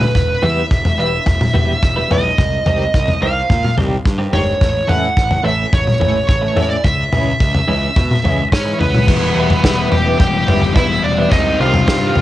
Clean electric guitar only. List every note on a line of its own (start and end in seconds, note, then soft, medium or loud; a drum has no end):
0.42 0.60 E3 medium
0.42 0.61 G3 medium
0.42 0.61 B3 medium
0.42 0.61 E4 medium
0.98 1.16 E3 medium
0.98 1.16 G3 medium
0.98 1.16 B3 medium
0.98 1.17 E4 medium
1.54 1.72 E3 medium
1.54 1.72 G3 medium
1.54 1.72 B3 loud
1.54 1.72 E4 medium
1.82 muted clean electric guitar stroke soft
1.96 2.09 E3 medium
1.96 2.09 G3 medium
1.96 2.10 B3 medium
1.96 2.10 E4 medium
2.10 2.28 E3 medium
2.10 2.28 G3 medium
2.10 2.28 B3 medium
2.10 2.29 E4 medium
2.66 2.84 D#3 medium
2.66 2.84 G3 medium
2.66 2.84 C4 loud
2.66 2.84 G4 medium
3.22 3.40 D#3 medium
3.22 3.40 G3 medium
3.22 3.40 C4 medium
3.22 3.40 G4 medium
3.77 3.95 D#3 medium
3.77 3.95 G3 medium
3.77 3.96 C4 medium
3.77 3.96 G4 medium
4.04 muted clean electric guitar stroke soft
4.18 4.31 D#3 medium
4.18 4.31 G3 medium
4.18 4.32 C4 medium
4.18 4.32 G4 medium
4.32 4.51 D#3 medium
4.32 4.51 G3 medium
4.32 4.51 C4 medium
4.32 4.51 G4 medium
4.88 5.06 E3 medium
4.88 5.06 A3 medium
4.88 5.07 C#4 medium
4.88 5.07 E4 medium
5.44 5.62 E3 medium
5.44 5.62 A3 medium
5.44 5.62 C#4 medium
5.44 5.63 E4 medium
6.00 6.18 E3 medium
6.00 6.18 A3 medium
6.00 6.19 C#4 medium
6.00 6.19 E4 medium
6.28 muted clean electric guitar stroke soft
6.41 6.54 E3 medium
6.41 6.55 A3 medium
6.41 6.55 C#4 medium
6.41 6.55 E4 medium
6.56 6.74 E3 medium
6.56 6.74 A3 medium
6.56 6.74 C#4 medium
6.56 6.74 E4 medium
7.12 7.30 E3 medium
7.12 7.30 G#3 medium
7.12 7.31 C#4 medium
7.12 7.31 E4 medium
7.68 7.86 E3 medium
7.68 7.86 G#3 medium
7.68 7.86 C#4 medium
7.68 7.87 E4 medium
8.24 8.42 E3 medium
8.24 8.42 G#3 medium
8.24 8.42 C#4 medium
8.24 8.42 E4 loud
8.52 muted clean electric guitar stroke soft
8.65 8.78 E3 medium
8.65 8.78 G#3 medium
8.65 8.79 C#4 medium
8.65 8.79 E4 medium
8.79 8.98 E3 medium
8.79 8.98 G#3 medium
8.79 8.98 C#4 medium
8.79 8.98 E4 medium
9.35 9.54 E3 medium
9.35 9.54 G3 medium
9.35 9.54 B3 medium
9.35 9.54 E4 medium
9.63 9.77 E3 medium
9.63 9.77 G3 medium
9.63 9.76 B3 medium
9.63 9.76 E4 medium
9.77 9.96 E3 medium
9.77 9.96 G3 medium
9.77 9.96 B3 medium
9.77 9.96 E4 medium
10.05 10.18 E3 medium
10.05 10.18 G3 medium
10.05 10.18 B3 medium
10.05 10.18 E4 loud
10.19 muted clean electric guitar stroke soft
10.47 10.62 E3 medium
10.47 10.62 G3 loud
10.47 10.61 B3 loud
10.47 10.61 E4 loud
10.62 muted clean electric guitar stroke soft
10.75 10.90 E3 medium
10.75 10.89 G3 medium
10.75 10.89 B3 medium
10.75 10.88 E4 medium
11.18 11.32 E3 medium
11.18 11.32 G3 medium
11.18 11.32 B3 medium
11.18 11.32 E4 medium
11.59 11.78 D#3 medium
11.59 11.78 G3 medium
11.59 11.78 C4 medium
11.59 11.78 G4 medium
11.87 12.01 D#3 medium
11.87 12.01 G3 medium
11.87 12.01 C4 medium
11.87 12.00 G4 medium
12.01 12.20 D#3 medium
12.01 12.20 G3 medium
12.01 12.20 C4 medium
12.01 12.20 G4 medium